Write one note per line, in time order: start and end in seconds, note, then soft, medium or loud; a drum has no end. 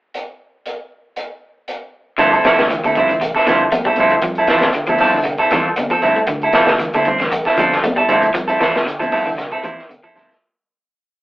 0.14 closed hi-hat soft
0.66 closed hi-hat soft
1.16 closed hi-hat soft
1.68 closed hi-hat soft
2.18 2.39 D2 loud
2.18 2.37 D3 medium
2.18 2.32 F3 medium
2.18 2.32 C4 medium
2.18 2.32 E4 medium
2.18 2.32 A4 medium
2.18 kick medium
2.18 closed hi-hat medium
2.18 low conga medium
2.33 2.45 C4 soft
2.33 2.44 E4 soft
2.33 2.44 A4 medium
2.33 closed hi-hat soft
2.33 high conga soft
2.44 2.63 C3 medium
2.44 2.61 F3 medium
2.44 2.61 C4 medium
2.44 2.61 E4 medium
2.44 2.61 A4 medium
2.44 muted fingered electric bass stroke soft
2.44 snare medium
2.44 closed hi-hat soft
2.59 2.79 D2 medium
2.59 snare medium
2.59 high conga medium
2.70 2.80 E3 medium
2.70 closed hi-hat medium
2.70 high conga soft
2.83 3.04 D2 medium
2.83 3.03 D3 medium
2.83 2.96 C4 soft
2.83 2.96 E4 medium
2.83 2.96 A4 medium
2.83 closed hi-hat soft
2.83 high conga medium
2.95 3.12 F3 medium
2.95 3.12 C4 medium
2.95 3.12 E4 medium
2.95 kick medium
2.95 closed hi-hat soft
2.95 low conga medium
3.09 3.30 A1 medium
3.09 3.18 D3 medium
3.09 closed hi-hat soft
3.21 3.40 C3 medium
3.21 closed hi-hat medium
3.21 high conga soft
3.35 3.46 C4 soft
3.35 3.47 E4 soft
3.35 3.47 A4 medium
3.35 kick medium
3.35 snare soft
3.46 3.67 D3 loud
3.46 3.62 F3 medium
3.46 3.65 F3 medium
3.46 3.63 C4 medium
3.46 3.63 E4 medium
3.46 3.63 A4 medium
3.46 snare soft
3.46 closed hi-hat medium
3.46 high conga medium
3.46 low conga medium
3.71 3.82 F2 medium
3.71 3.82 A3 medium
3.71 closed hi-hat medium
3.71 high conga medium
3.85 4.04 G3 medium
3.85 3.98 C4 soft
3.85 3.98 E4 soft
3.85 3.98 A4 medium
3.85 kick medium
3.85 high conga medium
3.96 4.17 D2 medium
3.96 4.14 F3 medium
3.96 kick medium
3.96 closed hi-hat medium
3.96 low conga medium
4.00 4.15 C4 medium
4.00 4.15 E4 medium
4.00 4.15 A4 medium
4.09 4.20 A3 medium
4.09 closed hi-hat soft
4.22 4.43 F2 medium
4.22 4.42 F3 medium
4.22 kick medium
4.22 closed hi-hat medium
4.22 low conga medium
4.35 4.49 E4 soft
4.35 4.49 A4 medium
4.35 closed hi-hat soft
4.35 high conga soft
4.40 4.48 C4 soft
4.47 4.68 E3 medium
4.47 4.65 F3 medium
4.47 4.65 C4 medium
4.47 4.66 E4 medium
4.47 4.66 A4 medium
4.47 kick medium
4.47 snare medium
4.47 closed hi-hat soft
4.60 4.72 C3 medium
4.60 snare medium
4.60 closed hi-hat soft
4.60 high conga medium
4.73 4.85 D3 medium
4.73 closed hi-hat medium
4.73 high conga soft
4.86 4.98 D2 medium
4.86 5.07 F3 medium
4.86 4.99 C4 soft
4.86 5.00 E4 medium
4.86 5.00 A4 medium
4.86 closed hi-hat soft
4.86 high conga medium
4.98 5.16 F3 medium
4.98 5.16 C4 medium
4.98 5.17 E4 medium
4.98 5.17 A4 medium
4.98 kick medium
4.98 open hi-hat medium
4.98 low conga medium
5.13 5.34 D3 medium
5.23 5.44 C3 medium
5.23 closed hi-hat medium
5.23 high conga soft
5.38 5.50 C4 soft
5.38 5.52 E4 soft
5.38 5.51 A4 medium
5.38 kick medium
5.38 closed hi-hat soft
5.50 5.63 A1 medium
5.50 5.71 E3 medium
5.50 5.67 F3 medium
5.50 5.67 C4 medium
5.50 5.68 A4 medium
5.50 snare soft
5.50 closed hi-hat soft
5.50 high conga medium
5.50 low conga medium
5.76 5.88 C2 medium
5.76 5.88 D3 medium
5.76 closed hi-hat medium
5.76 high conga medium
5.90 6.10 F3 medium
5.90 6.02 C4 soft
5.90 6.02 A4 medium
5.90 kick medium
5.90 closed hi-hat soft
6.02 6.13 D2 medium
6.02 6.19 C4 medium
6.02 6.19 E4 medium
6.02 6.19 A4 medium
6.02 kick medium
6.02 closed hi-hat soft
6.02 low conga medium
6.15 6.25 A3 medium
6.15 closed hi-hat soft
6.27 6.48 D2 loud
6.27 6.47 D3 medium
6.27 kick loud
6.27 closed hi-hat medium
6.41 6.53 E4 soft
6.41 6.53 A4 medium
6.41 closed hi-hat soft
6.41 high conga soft
6.53 6.73 C3 medium
6.53 6.70 F3 medium
6.53 6.71 C4 medium
6.53 6.71 E4 medium
6.53 6.71 A4 medium
6.53 muted fingered electric bass stroke soft
6.53 snare medium
6.53 closed hi-hat soft
6.67 6.89 D2 medium
6.67 snare medium
6.67 high conga medium
6.79 6.90 E3 medium
6.79 closed hi-hat medium
6.79 high conga soft
6.93 7.14 D2 medium
6.93 7.13 D3 medium
6.93 7.06 C4 soft
6.93 7.07 E4 medium
6.93 7.06 A4 medium
6.93 closed hi-hat soft
6.93 high conga medium
7.05 7.23 C4 medium
7.05 muted clean electric guitar stroke medium
7.05 kick medium
7.05 closed hi-hat soft
7.05 low conga medium
7.19 7.40 A1 medium
7.19 7.29 D3 medium
7.19 snare soft
7.19 closed hi-hat soft
7.32 muted clean electric guitar stroke medium
7.32 closed hi-hat medium
7.32 high conga soft
7.45 7.57 C4 soft
7.45 7.58 E4 soft
7.45 7.58 A4 medium
7.45 kick medium
7.45 snare soft
7.57 7.78 D3 medium
7.57 7.74 F3 medium
7.57 7.77 F3 medium
7.57 7.74 C4 medium
7.57 7.75 A4 medium
7.57 closed hi-hat medium
7.57 high conga loud
7.57 low conga medium
7.72 snare soft
7.82 7.93 F2 medium
7.82 7.94 A3 medium
7.82 closed hi-hat medium
7.86 high conga medium
7.96 8.16 G3 medium
7.96 8.08 E4 soft
7.96 8.09 A4 medium
7.96 muted clean electric guitar stroke soft
7.96 kick medium
8.08 8.29 D2 medium
8.08 8.25 F3 medium
8.08 8.25 C4 medium
8.08 8.26 E4 medium
8.08 8.26 A4 medium
8.08 kick medium
8.08 closed hi-hat medium
8.08 high conga medium
8.08 low conga medium
8.22 8.31 A3 medium
8.22 closed hi-hat soft
8.34 8.55 F2 medium
8.34 8.53 F3 medium
8.34 kick medium
8.34 closed hi-hat medium
8.34 low conga medium
8.48 8.60 C4 soft
8.48 8.59 E4 soft
8.48 8.60 A4 medium
8.48 closed hi-hat soft
8.48 high conga soft
8.60 8.80 E3 medium
8.60 8.77 F3 medium
8.60 8.77 C4 medium
8.60 8.77 E4 medium
8.60 8.77 A4 medium
8.60 kick medium
8.60 snare medium
8.60 closed hi-hat soft
8.75 8.85 C3 medium
8.75 snare medium
8.75 closed hi-hat soft
8.75 high conga medium
8.86 8.97 D3 medium
8.86 closed hi-hat medium
8.86 high conga soft
8.99 9.10 D2 medium
8.99 9.19 F3 medium
8.99 9.11 C4 soft
8.99 9.11 E4 soft
8.99 9.12 A4 medium
8.99 closed hi-hat soft
8.99 high conga medium
9.12 9.28 F3 medium
9.12 9.28 C4 medium
9.12 9.29 E4 medium
9.12 9.29 A4 medium
9.12 kick medium
9.12 open hi-hat medium
9.12 low conga medium
9.26 9.47 D3 medium
9.26 9.35 E3 medium
9.38 9.57 C3 medium
9.38 snare soft
9.38 closed hi-hat medium
9.38 high conga soft
9.51 9.64 C4 soft
9.51 9.64 E4 soft
9.51 9.64 A4 medium
9.51 kick medium
9.51 closed hi-hat soft
9.63 9.75 A1 medium
9.63 9.83 E3 medium
9.63 9.80 F3 medium
9.63 9.81 C4 medium
9.63 9.81 E4 medium
9.63 muted clean electric guitar stroke medium
9.63 closed hi-hat soft
9.63 high conga medium
9.79 snare soft
9.89 10.01 C2 medium
9.89 10.00 D3 medium
9.89 closed hi-hat medium
9.89 high conga medium
10.03 10.22 F3 medium
10.03 10.14 C4 soft
10.03 10.15 E4 soft
10.03 10.16 A4 medium
10.03 kick medium
10.03 closed hi-hat soft
10.16 10.27 D2 medium
10.16 10.32 F3 medium
10.16 10.32 C4 medium
10.16 10.32 E4 medium
10.16 10.32 A4 medium
10.16 kick medium
10.16 snare soft
10.16 closed hi-hat soft
10.16 high conga medium
10.16 low conga medium
10.29 10.38 A3 medium
10.29 snare soft
10.29 closed hi-hat soft